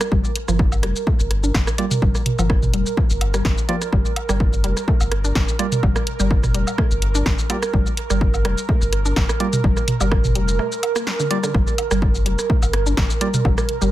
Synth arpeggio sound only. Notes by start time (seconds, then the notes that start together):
0.12 G3
0.48 F3
0.83 G3
1.07 A3
1.43 D4
1.78 G3
2.02 G3
2.39 F3
2.74 G3
2.97 A3
3.34 G3
3.69 F3
3.92 G3
4.29 G3
4.64 G3
4.88 A3
5.24 D4
5.59 G3
5.83 G3
6.20 G3
6.54 G3
6.78 A3
7.15 D4
7.50 G3
7.74 G3
8.10 G3
8.45 G3
8.69 A3
9.05 D4
9.40 G3
9.64 G3
10.01 G3
10.35 G3
10.59 A3
10.96 A#3
11.20 D3
11.31 G3
11.43 D3
11.54 G3
11.91 G3
12.26 G3
12.50 A3
12.86 D4
13.21 G3
13.45 G3
13.82 G3